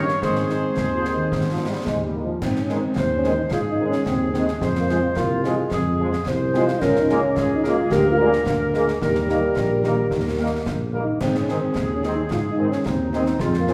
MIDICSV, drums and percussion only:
0, 0, Header, 1, 2, 480
1, 0, Start_track
1, 0, Key_signature, -4, "major"
1, 0, Tempo, 549451
1, 191, Time_signature, 2, 2, 24, 8
1, 12000, End_track
2, 0, Start_track
2, 0, Title_t, "Drums"
2, 73, Note_on_c, 9, 38, 46
2, 160, Note_off_c, 9, 38, 0
2, 193, Note_on_c, 9, 35, 67
2, 193, Note_on_c, 9, 38, 61
2, 280, Note_off_c, 9, 35, 0
2, 280, Note_off_c, 9, 38, 0
2, 309, Note_on_c, 9, 38, 48
2, 397, Note_off_c, 9, 38, 0
2, 432, Note_on_c, 9, 38, 48
2, 519, Note_off_c, 9, 38, 0
2, 672, Note_on_c, 9, 35, 62
2, 672, Note_on_c, 9, 38, 66
2, 759, Note_off_c, 9, 35, 0
2, 759, Note_off_c, 9, 38, 0
2, 915, Note_on_c, 9, 38, 46
2, 1003, Note_off_c, 9, 38, 0
2, 1153, Note_on_c, 9, 35, 68
2, 1153, Note_on_c, 9, 38, 55
2, 1241, Note_off_c, 9, 35, 0
2, 1241, Note_off_c, 9, 38, 0
2, 1631, Note_on_c, 9, 35, 64
2, 1631, Note_on_c, 9, 38, 64
2, 1718, Note_off_c, 9, 35, 0
2, 1718, Note_off_c, 9, 38, 0
2, 2113, Note_on_c, 9, 35, 65
2, 2113, Note_on_c, 9, 38, 62
2, 2113, Note_on_c, 9, 49, 37
2, 2200, Note_off_c, 9, 35, 0
2, 2200, Note_off_c, 9, 38, 0
2, 2200, Note_off_c, 9, 49, 0
2, 2234, Note_on_c, 9, 38, 44
2, 2321, Note_off_c, 9, 38, 0
2, 2350, Note_on_c, 9, 38, 44
2, 2437, Note_off_c, 9, 38, 0
2, 2587, Note_on_c, 9, 35, 62
2, 2587, Note_on_c, 9, 38, 66
2, 2675, Note_off_c, 9, 35, 0
2, 2675, Note_off_c, 9, 38, 0
2, 2828, Note_on_c, 9, 38, 45
2, 2916, Note_off_c, 9, 38, 0
2, 3067, Note_on_c, 9, 35, 66
2, 3067, Note_on_c, 9, 38, 61
2, 3155, Note_off_c, 9, 35, 0
2, 3155, Note_off_c, 9, 38, 0
2, 3427, Note_on_c, 9, 38, 48
2, 3514, Note_off_c, 9, 38, 0
2, 3546, Note_on_c, 9, 35, 62
2, 3546, Note_on_c, 9, 38, 59
2, 3633, Note_off_c, 9, 35, 0
2, 3633, Note_off_c, 9, 38, 0
2, 3791, Note_on_c, 9, 38, 48
2, 3878, Note_off_c, 9, 38, 0
2, 3912, Note_on_c, 9, 38, 44
2, 4000, Note_off_c, 9, 38, 0
2, 4031, Note_on_c, 9, 35, 66
2, 4031, Note_on_c, 9, 38, 59
2, 4118, Note_off_c, 9, 35, 0
2, 4118, Note_off_c, 9, 38, 0
2, 4150, Note_on_c, 9, 38, 48
2, 4238, Note_off_c, 9, 38, 0
2, 4274, Note_on_c, 9, 38, 45
2, 4362, Note_off_c, 9, 38, 0
2, 4511, Note_on_c, 9, 35, 66
2, 4511, Note_on_c, 9, 38, 64
2, 4598, Note_off_c, 9, 35, 0
2, 4598, Note_off_c, 9, 38, 0
2, 4754, Note_on_c, 9, 38, 45
2, 4841, Note_off_c, 9, 38, 0
2, 4991, Note_on_c, 9, 35, 69
2, 4991, Note_on_c, 9, 38, 59
2, 5078, Note_off_c, 9, 35, 0
2, 5078, Note_off_c, 9, 38, 0
2, 5353, Note_on_c, 9, 38, 49
2, 5440, Note_off_c, 9, 38, 0
2, 5470, Note_on_c, 9, 35, 59
2, 5470, Note_on_c, 9, 38, 63
2, 5558, Note_off_c, 9, 35, 0
2, 5558, Note_off_c, 9, 38, 0
2, 5714, Note_on_c, 9, 38, 45
2, 5801, Note_off_c, 9, 38, 0
2, 5835, Note_on_c, 9, 38, 48
2, 5922, Note_off_c, 9, 38, 0
2, 5955, Note_on_c, 9, 35, 70
2, 5955, Note_on_c, 9, 38, 66
2, 5955, Note_on_c, 9, 49, 25
2, 6043, Note_off_c, 9, 35, 0
2, 6043, Note_off_c, 9, 38, 0
2, 6043, Note_off_c, 9, 49, 0
2, 6076, Note_on_c, 9, 38, 48
2, 6163, Note_off_c, 9, 38, 0
2, 6196, Note_on_c, 9, 38, 48
2, 6283, Note_off_c, 9, 38, 0
2, 6435, Note_on_c, 9, 35, 63
2, 6435, Note_on_c, 9, 38, 62
2, 6523, Note_off_c, 9, 35, 0
2, 6523, Note_off_c, 9, 38, 0
2, 6675, Note_on_c, 9, 38, 48
2, 6763, Note_off_c, 9, 38, 0
2, 6913, Note_on_c, 9, 35, 67
2, 6913, Note_on_c, 9, 38, 64
2, 7001, Note_off_c, 9, 35, 0
2, 7001, Note_off_c, 9, 38, 0
2, 7275, Note_on_c, 9, 38, 49
2, 7362, Note_off_c, 9, 38, 0
2, 7394, Note_on_c, 9, 35, 62
2, 7394, Note_on_c, 9, 38, 68
2, 7481, Note_off_c, 9, 35, 0
2, 7481, Note_off_c, 9, 38, 0
2, 7635, Note_on_c, 9, 38, 49
2, 7723, Note_off_c, 9, 38, 0
2, 7755, Note_on_c, 9, 38, 47
2, 7842, Note_off_c, 9, 38, 0
2, 7876, Note_on_c, 9, 35, 66
2, 7876, Note_on_c, 9, 38, 61
2, 7964, Note_off_c, 9, 35, 0
2, 7964, Note_off_c, 9, 38, 0
2, 7991, Note_on_c, 9, 38, 47
2, 8079, Note_off_c, 9, 38, 0
2, 8116, Note_on_c, 9, 38, 44
2, 8204, Note_off_c, 9, 38, 0
2, 8353, Note_on_c, 9, 35, 57
2, 8353, Note_on_c, 9, 38, 60
2, 8440, Note_off_c, 9, 35, 0
2, 8440, Note_off_c, 9, 38, 0
2, 8594, Note_on_c, 9, 38, 45
2, 8682, Note_off_c, 9, 38, 0
2, 8831, Note_on_c, 9, 35, 61
2, 8831, Note_on_c, 9, 38, 50
2, 8919, Note_off_c, 9, 35, 0
2, 8919, Note_off_c, 9, 38, 0
2, 9315, Note_on_c, 9, 35, 64
2, 9315, Note_on_c, 9, 38, 60
2, 9402, Note_off_c, 9, 35, 0
2, 9402, Note_off_c, 9, 38, 0
2, 9791, Note_on_c, 9, 35, 66
2, 9791, Note_on_c, 9, 38, 60
2, 9791, Note_on_c, 9, 49, 38
2, 9878, Note_off_c, 9, 35, 0
2, 9878, Note_off_c, 9, 38, 0
2, 9878, Note_off_c, 9, 49, 0
2, 9914, Note_on_c, 9, 38, 47
2, 10002, Note_off_c, 9, 38, 0
2, 10033, Note_on_c, 9, 38, 46
2, 10120, Note_off_c, 9, 38, 0
2, 10269, Note_on_c, 9, 35, 60
2, 10269, Note_on_c, 9, 38, 60
2, 10356, Note_off_c, 9, 35, 0
2, 10356, Note_off_c, 9, 38, 0
2, 10512, Note_on_c, 9, 38, 45
2, 10599, Note_off_c, 9, 38, 0
2, 10754, Note_on_c, 9, 35, 64
2, 10754, Note_on_c, 9, 38, 59
2, 10841, Note_off_c, 9, 35, 0
2, 10841, Note_off_c, 9, 38, 0
2, 11114, Note_on_c, 9, 38, 44
2, 11202, Note_off_c, 9, 38, 0
2, 11232, Note_on_c, 9, 35, 64
2, 11232, Note_on_c, 9, 38, 59
2, 11319, Note_off_c, 9, 35, 0
2, 11319, Note_off_c, 9, 38, 0
2, 11471, Note_on_c, 9, 38, 46
2, 11558, Note_off_c, 9, 38, 0
2, 11584, Note_on_c, 9, 38, 50
2, 11672, Note_off_c, 9, 38, 0
2, 11702, Note_on_c, 9, 35, 70
2, 11702, Note_on_c, 9, 38, 65
2, 11789, Note_off_c, 9, 35, 0
2, 11789, Note_off_c, 9, 38, 0
2, 11825, Note_on_c, 9, 38, 48
2, 11912, Note_off_c, 9, 38, 0
2, 11944, Note_on_c, 9, 38, 47
2, 12000, Note_off_c, 9, 38, 0
2, 12000, End_track
0, 0, End_of_file